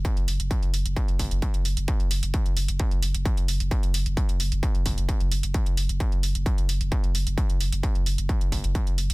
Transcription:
0.05 kick loud
0.05 closed hi-hat loud
0.17 0.27 F#1 medium
0.17 closed hi-hat medium
0.28 0.39 F#1 loud
0.28 open hi-hat loud
0.39 0.50 F#1 medium
0.39 closed hi-hat medium
0.51 kick loud
0.51 closed hi-hat medium
0.63 0.73 F#1 medium
0.63 closed hi-hat medium
0.73 0.85 F#1 loud
0.73 open hi-hat loud
0.85 0.96 F#1 medium
0.85 closed hi-hat medium
0.97 kick loud
0.97 closed hi-hat medium
1.08 1.19 F#1 medium
1.08 closed hi-hat medium
1.19 1.31 F#1 loud
1.19 kick medium
1.19 open hi-hat loud
1.31 1.42 F#1 medium
1.31 closed hi-hat medium
1.42 kick loud
1.42 closed hi-hat loud
1.54 1.64 F#1 medium
1.54 closed hi-hat medium
1.65 1.76 F#1 loud
1.65 open hi-hat loud
1.77 1.88 F#1 medium
1.77 closed hi-hat medium
1.88 kick loud
1.88 closed hi-hat loud
2.00 2.10 F#1 medium
2.00 closed hi-hat medium
2.11 2.22 F#1 loud
2.11 open hi-hat loud
2.23 2.34 F#1 medium
2.23 closed hi-hat medium
2.34 kick loud
2.34 closed hi-hat medium
2.46 2.56 F#1 medium
2.46 closed hi-hat medium
2.57 2.68 F#1 loud
2.57 open hi-hat loud
2.68 2.79 F#1 medium
2.68 closed hi-hat medium
2.80 kick loud
2.80 closed hi-hat medium
2.91 3.02 F#1 medium
2.91 closed hi-hat medium
3.03 3.14 F#1 loud
3.03 open hi-hat loud
3.15 3.25 F#1 medium
3.15 closed hi-hat medium
3.25 kick loud
3.25 closed hi-hat loud
3.37 3.48 F#1 medium
3.37 closed hi-hat medium
3.48 3.60 F#1 loud
3.48 open hi-hat loud
3.60 3.71 F#1 medium
3.60 closed hi-hat medium
3.71 kick loud
3.71 closed hi-hat loud
3.83 3.94 F#1 medium
3.83 closed hi-hat medium
3.94 4.06 F#1 loud
3.94 open hi-hat loud
4.06 4.17 F#1 medium
4.06 closed hi-hat medium
4.17 kick loud
4.17 closed hi-hat medium
4.29 4.40 F#1 medium
4.29 closed hi-hat medium
4.40 4.51 F#1 medium
4.40 open hi-hat loud
4.52 4.63 F#1 medium
4.52 closed hi-hat medium
4.63 kick loud
4.63 closed hi-hat medium
4.75 4.85 F#1 medium
4.75 closed hi-hat medium
4.86 4.97 F#1 loud
4.86 kick medium
4.86 open hi-hat loud
4.98 5.09 F#1 medium
4.98 closed hi-hat soft
5.09 kick loud
5.09 closed hi-hat medium
5.21 5.31 F#1 medium
5.21 closed hi-hat soft
5.32 5.43 F#1 loud
5.32 open hi-hat loud
5.43 5.54 F#1 medium
5.43 closed hi-hat medium
5.54 kick loud
5.54 closed hi-hat medium
5.66 5.77 F#1 medium
5.66 closed hi-hat medium
5.77 5.89 F#1 loud
5.77 open hi-hat loud
5.89 6.00 F#1 medium
5.89 closed hi-hat soft
6.00 kick loud
6.00 closed hi-hat medium
6.12 6.23 F#1 medium
6.12 closed hi-hat soft
6.23 6.34 F#1 loud
6.23 open hi-hat loud
6.35 6.46 F#1 medium
6.35 closed hi-hat soft
6.46 kick loud
6.46 closed hi-hat medium
6.58 6.68 F#1 medium
6.58 closed hi-hat medium
6.69 6.80 F#1 loud
6.69 open hi-hat loud
6.81 6.92 F#1 medium
6.81 closed hi-hat soft
6.92 kick loud
6.92 closed hi-hat medium
7.04 7.14 F#1 medium
7.04 closed hi-hat soft
7.15 7.26 F#1 loud
7.15 open hi-hat loud
7.27 7.37 F#1 medium
7.27 closed hi-hat soft
7.38 kick loud
7.38 closed hi-hat medium
7.49 7.60 F#1 medium
7.49 closed hi-hat soft
7.60 7.72 F#1 loud
7.60 open hi-hat loud
7.72 7.83 F#1 medium
7.72 closed hi-hat soft
7.83 kick loud
7.83 closed hi-hat medium
7.95 8.06 F#1 medium
7.95 closed hi-hat soft
8.06 8.17 F#1 loud
8.06 open hi-hat loud
8.18 8.29 F#1 medium
8.18 closed hi-hat soft
8.29 kick loud
8.29 closed hi-hat medium
8.41 8.52 F#1 medium
8.41 closed hi-hat soft
8.52 8.63 F#1 loud
8.52 kick medium
8.52 open hi-hat loud
8.64 8.75 F#1 medium
8.64 closed hi-hat soft
8.75 kick loud
8.75 closed hi-hat medium
8.87 8.97 F#1 medium
8.87 closed hi-hat soft
8.98 9.09 F#1 loud
8.98 open hi-hat loud
9.10 9.14 F#1 medium
9.10 closed hi-hat soft

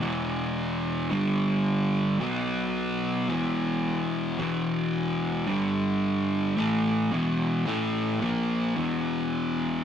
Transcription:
0.01 1.09 E2 loud
0.01 1.10 B2 loud
0.01 1.10 E3 loud
1.11 2.18 G2 loud
1.11 2.19 D3 loud
1.11 2.19 G3 loud
2.19 3.27 B2 medium
2.19 3.28 F#3 loud
2.19 3.28 B3 loud
3.28 4.37 E2 medium
3.28 4.37 B2 loud
3.28 4.37 E3 loud
4.39 5.46 E2 medium
4.39 5.47 B2 loud
4.39 5.47 E3 loud
5.47 6.55 G2 loud
5.47 6.55 D3 loud
5.47 6.56 G3 loud
6.56 7.10 A2 loud
6.56 7.10 E3 loud
6.56 7.10 A3 loud
7.11 7.65 E2 loud
7.11 7.65 B2 loud
7.11 7.65 E3 loud
7.66 8.19 A2 loud
7.66 8.20 E3 loud
7.66 8.20 A3 loud
8.20 8.74 A#2 loud
8.20 8.74 F3 loud
8.20 8.74 A#3 loud
8.75 9.83 E2 medium
8.75 9.83 B2 loud
8.75 9.84 E3 loud

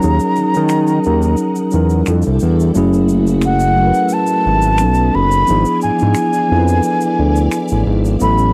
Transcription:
0.00 0.53 F#3 loud
0.00 0.55 C#4 loud
0.00 0.03 D#4 medium
0.00 2.03 D#4 medium
0.00 0.47 D#4 loud
0.00 0.48 G#4 loud
0.00 0.57 A#4 medium
0.00 2.03 A#4 medium
0.00 2.04 D#5 medium
0.00 2.03 F#5 medium
0.00 2.03 A#5 medium
0.00 shaker medium
0.04 0.20 D#2 loud
0.20 shaker soft
0.36 0.45 D#3 soft
0.36 shaker soft
0.53 1.00 D#3 medium
0.53 1.57 F#3 medium
0.53 1.57 C#4 medium
0.53 1.58 D#4 medium
0.53 shaker soft
0.57 1.59 A#4 medium
0.69 finger snap medium
0.69 shaker medium
0.87 shaker soft
1.04 1.36 D#2 loud
1.04 shaker soft
1.22 shaker soft
1.37 shaker medium
1.56 shaker soft
1.71 2.03 E2 medium
1.71 2.06 F#3 medium
1.71 2.06 C#4 medium
1.71 2.07 D#4 medium
1.71 shaker soft
1.76 2.08 A#4 loud
1.90 shaker soft
2.06 2.24 F2 medium
2.06 2.66 G3 medium
2.06 2.67 D4 medium
2.06 2.74 E4 medium
2.06 2.67 E4 medium
2.06 2.74 A4 medium
2.06 2.74 D5 medium
2.06 2.74 G5 medium
2.06 finger snap medium
2.06 shaker medium
2.10 2.68 A4 medium
2.22 shaker soft
2.27 2.40 C2 medium
2.39 2.72 E2 medium
2.39 shaker soft
2.60 shaker soft
2.74 3.92 F#1 loud
2.74 3.64 F#3 loud
2.74 4.77 A3 medium
2.74 3.64 A3 loud
2.74 3.65 C#4 loud
2.74 3.65 E4 loud
2.74 4.77 F#4 medium
2.74 4.77 E5 medium
2.74 4.76 F#5 medium
2.74 shaker medium
2.78 3.66 G#4 loud
2.93 shaker soft
3.09 shaker soft
3.27 shaker soft
3.41 4.15 F#5 loud
3.41 finger snap medium
3.41 shaker medium
3.60 shaker medium
3.77 4.77 F#3 medium
3.77 4.80 A3 medium
3.77 4.80 C#4 medium
3.77 4.80 E4 medium
3.81 3.86 A#4 medium
3.87 4.84 B4 medium
3.94 shaker medium
4.09 5.16 A5 loud
4.09 shaker medium
4.27 shaker medium
4.46 4.83 G#1 medium
4.62 shaker soft
4.78 5.11 B1 loud
4.78 5.38 F#3 medium
4.78 5.39 B3 medium
4.78 5.46 C#4 medium
4.78 5.40 C#4 medium
4.78 5.40 D#4 medium
4.78 5.46 B4 medium
4.78 5.46 D#5 medium
4.78 5.46 A5 medium
4.78 finger snap medium
4.78 shaker medium
4.83 5.41 A4 medium
4.94 shaker medium
5.15 5.44 F#1 loud
5.15 5.82 B5 loud
5.31 shaker medium
5.46 5.91 F3 loud
5.46 5.92 B3 medium
5.46 5.93 D4 medium
5.46 8.17 E4 medium
5.46 5.93 E4 medium
5.46 8.17 D5 medium
5.46 8.18 F5 medium
5.46 8.17 G#5 medium
5.46 shaker medium
5.50 5.65 G#1 loud
5.50 5.94 G#4 loud
5.65 shaker medium
5.81 5.91 G#2 soft
5.81 7.82 G#5 loud
5.81 shaker soft
5.98 6.42 F3 medium
5.98 6.43 B3 medium
5.98 6.43 D4 medium
5.98 6.44 E4 medium
5.98 shaker soft
6.02 6.15 G#2 loud
6.02 6.44 G#4 medium
6.15 finger snap medium
6.15 shaker medium
6.33 shaker soft
6.48 6.81 F2 loud
6.48 7.68 F3 medium
6.48 7.68 B3 medium
6.48 7.69 D4 medium
6.48 7.69 E4 medium
6.52 6.58 A4 medium
6.59 7.73 B4 medium
6.68 shaker soft
6.83 shaker medium
7.01 shaker soft
7.19 7.49 D2 medium
7.36 shaker soft
7.51 finger snap medium
7.51 shaker medium
7.68 7.85 A1 medium
7.68 shaker soft
7.87 8.17 G#1 loud
8.05 shaker soft
8.19 8.53 A1 loud
8.19 8.53 F#3 medium
8.19 8.53 B3 medium
8.19 8.53 C#4 medium
8.19 8.53 E4 medium
8.19 8.53 B4 medium
8.19 8.53 E5 medium
8.19 8.53 F#5 medium
8.19 8.53 B5 loud
8.19 shaker medium
8.23 8.53 A4 loud
8.38 shaker soft

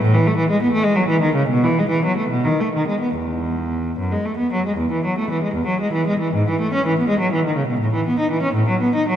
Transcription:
0.02 0.14 A2 medium
0.14 0.26 E3 medium
0.27 0.38 A3 medium
0.37 0.49 E3 medium
0.50 0.61 G#3 medium
0.62 0.73 B3 medium
0.72 0.85 A3 medium
0.84 0.97 G#3 medium
0.96 1.10 F#3 medium
1.09 1.23 E3 medium
1.22 1.37 D#3 medium
1.35 1.50 C#3 medium
1.49 1.64 B2 medium
1.64 1.78 E3 medium
1.79 1.92 G#3 medium
1.90 2.04 E3 medium
2.05 2.18 F#3 medium
2.17 2.31 A3 medium
2.29 2.44 B2 medium
2.45 2.59 D#3 medium
2.60 2.73 A3 medium
2.75 2.87 D#3 medium
2.88 3.01 G#3 medium
3.01 3.14 B3 medium
3.15 3.97 E2 medium
3.99 4.12 F#2 medium
4.12 4.26 G#3 medium
4.25 4.40 A3 medium
4.37 4.53 B3 medium
4.53 4.67 F#3 soft
4.66 4.80 G#3 soft
4.77 4.92 E2 medium
4.92 5.05 E3 medium
5.05 5.18 F#3 medium
5.18 5.31 A3 medium
5.30 5.44 E3 soft
5.43 5.56 G#3 medium
5.55 5.68 E2 medium
5.67 5.80 F#3 medium
5.81 5.94 G#3 medium
5.93 6.07 E3 medium
6.07 6.21 G#3 medium
6.20 6.34 E3 medium
6.34 6.47 G#2 medium
6.49 6.61 E3 medium
6.61 6.73 A3 medium
6.74 6.85 C#4 medium
6.86 6.98 E3 medium
6.99 7.10 B3 medium
7.08 7.21 G#3 medium
7.20 7.33 F#3 medium
7.32 7.45 E3 medium
7.45 7.58 D#3 medium
7.57 7.69 C#3 medium
7.68 7.81 B2 medium
7.80 7.93 A2 medium
7.94 8.06 E3 medium
8.07 8.18 B3 medium
8.19 8.31 D#4 medium
8.31 8.43 E3 medium
8.43 8.55 C#4 medium
8.53 8.67 A2 medium
8.69 8.81 F#3 medium
8.81 8.94 B3 medium
8.95 9.09 D#4 medium
9.09 9.16 F#3 medium

